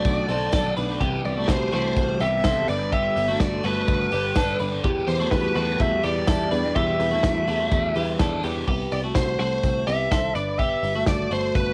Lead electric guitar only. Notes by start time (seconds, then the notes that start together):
Already playing: D5
1.25 D5
1.49 C5
1.74 C5
2.21 E5
2.45 E5
2.69 D5
2.93 E5
3.41 D5
3.65 B4
5.08 C5
5.31 B4
5.56 B4
5.81 E5
6.05 D5
6.76 E5
8.92 D5
9.15 C5
9.40 C5
9.87 E5
10.35 D5
10.59 E5
11.08 D5
11.33 C5
11.56 B4